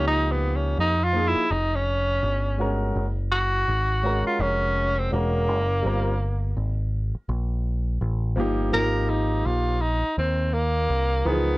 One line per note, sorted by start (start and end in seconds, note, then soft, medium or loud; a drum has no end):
0.00 0.74 C#2 medium
0.00 0.89 F3 medium
0.00 0.89 A#3 medium
0.00 0.90 D#4 medium
0.00 0.94 G4 medium
0.07 0.33 D#4 loud
0.31 0.57 B3 loud
0.56 0.79 C#4 medium
0.78 1.33 F2 medium
0.78 1.05 D#4 loud
1.04 1.29 F4 loud
1.13 1.41 F3 medium
1.13 1.42 A#3 medium
1.13 1.43 D#4 medium
1.13 1.43 G#4 medium
1.28 1.53 E4 loud
1.37 muted picked electric bass stroke soft
1.51 2.19 F1 loud
1.51 1.77 D#4 loud
1.75 2.83 C#4 medium
2.23 2.91 G1 loud
2.57 3.03 G#3 medium
2.57 3.04 C#4 medium
2.57 3.04 F#4 medium
2.57 3.05 A#4 medium
2.96 3.64 F#1 medium
3.32 4.22 F#4 loud
3.68 4.23 G#1 medium
4.02 5.06 G#3 medium
4.02 5.06 C#4 medium
4.02 5.07 F#4 medium
4.02 5.07 A#4 medium
4.27 4.42 F4 medium
4.40 5.08 F1 loud
4.40 5.00 C#4 loud
4.99 5.12 C4 medium
5.11 5.48 E1 loud
5.11 5.56 G#3 medium
5.11 6.89 A#3 medium
5.11 5.57 C#4 medium
5.11 5.57 F#4 medium
5.11 5.58 A#4 medium
5.48 5.83 F#1 medium
5.82 6.53 G1 medium
5.82 6.11 G3 medium
5.82 6.12 C4 medium
5.82 6.12 F4 medium
5.86 6.13 A#4 medium
6.57 7.12 G#1 medium
7.15 muted picked electric bass stroke soft
7.29 7.97 A#1 loud
8.01 8.35 A1 loud
8.36 8.71 G1 medium
8.36 8.70 F3 medium
8.36 8.71 A#3 medium
8.36 8.72 D#4 medium
8.36 8.80 G4 medium
8.71 9.42 G#1 loud
8.71 9.75 F3 medium
8.71 9.76 A#3 medium
8.71 9.76 D#4 medium
8.71 8.82 F4 medium
8.71 9.11 A#4 loud
8.82 9.80 G4 medium
9.09 9.48 D#4 medium
9.46 10.01 A#1 medium
9.46 9.83 F4 loud
9.82 10.18 D#4 medium
10.04 muted picked electric bass stroke soft
10.18 10.87 D#2 medium
10.18 10.55 C4 medium
10.54 11.28 A#3 loud
10.90 11.24 C2 medium
11.25 11.58 C#2 medium
11.25 11.34 E3 medium
11.25 11.58 B3 medium
11.25 11.58 D#4 medium
11.25 11.58 G#4 loud
11.25 11.58 A#4 medium
11.31 11.58 F3 medium